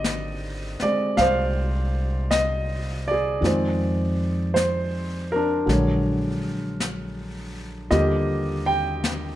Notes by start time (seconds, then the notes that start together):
Already playing: G#1 D3 D#3 A#3 C4 G4 D5 D#5
0.04 brush sweep, snare, hi-hat pedal
0.80 G#3 C4 D5, muted upright bass stroke, snare
1.17 C2 C5 F5, brush sweep, snare
2.31 D#5, brush sweep, snare, hi-hat pedal
3.08 G#4 D5
3.41 F2 D#3 F3, brush sweep, snare
3.45 G#3 C4
4.54 C5, brush sweep, snare, hi-hat pedal
5.32 A#4
5.36 D4
5.66 A#1 D3 F#3 G#3, brush sweep, snare
5.71 C#5
6.80 brush sweep, snare, hi-hat pedal
7.90 D#2 D3 F3 G3 A#3 G4 D#5, brush sweep, snare
8.66 G5
9.04 brush sweep, snare, hi-hat pedal